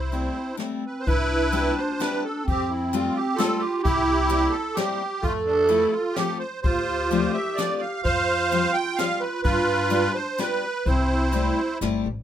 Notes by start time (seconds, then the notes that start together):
Already playing: C2 E4 C5
0.12 G3 A3 C4 E4, closed hi-hat
0.54 G3 D4
0.58 A3 C4 E4, snare, closed hi-hat
0.86 B4
1.00 C5
1.07 C2 D4 E4 B4, kick, closed hi-hat
1.52 G3 B3 C4 E4 G4, closed hi-hat
1.78 C5
2.00 G3 B3 C4 E4 G4 B4, snare, closed hi-hat
2.25 A4
2.45 F2 C4 G4, kick, closed hi-hat
2.49 C4
2.70 E4
2.92 G3 A3 C4 F4 G4, closed hi-hat
3.16 G4
3.36 G3 A3 F4 A4
3.40 C4 G4, snare, closed hi-hat
3.60 G4
3.83 C2 E4 G4, kick, closed hi-hat
4.30 G3 A#3 C4 E4 G4, closed hi-hat
4.50 A4
4.75 G3 A#3 C4 E4 G4, snare, closed hi-hat
5.22 F2 A3 F4 A4, kick, closed hi-hat
5.46 D4
5.68 F3 A3 C4 E4 F4 A4, closed hi-hat
5.92 F4
6.13 F3 A3 C4 G4, snare, closed hi-hat
6.17 F4 A4
6.39 C5
6.62 D2 F4 G4 C5, kick, closed hi-hat
7.11 F3 A3 C4 D4 F4, closed hi-hat
7.34 E5
7.56 F3 A3 C4 D4 F4 D5, snare, closed hi-hat
7.81 F5
8.03 F2 F4 C5 F5, kick, closed hi-hat
8.52 F3 G3 C4 F4 G4, closed hi-hat
8.74 G5
8.96 F3 G3 C4 F4 G4 F5, snare, closed hi-hat
9.20 B4
9.43 G2 D4 F4 B4, kick, closed hi-hat
9.90 G3 B3 D4 F4 G4, closed hi-hat
10.15 C5
10.38 G3 B3 D4 F4 G4 B4, snare, closed hi-hat
10.86 C2 C4 E4 C5, kick, closed hi-hat
11.32 G3 A3 C4 E4 G4, closed hi-hat
11.81 G1 G3 A3 C4 E4 G4, snare, closed hi-hat
12.06 A1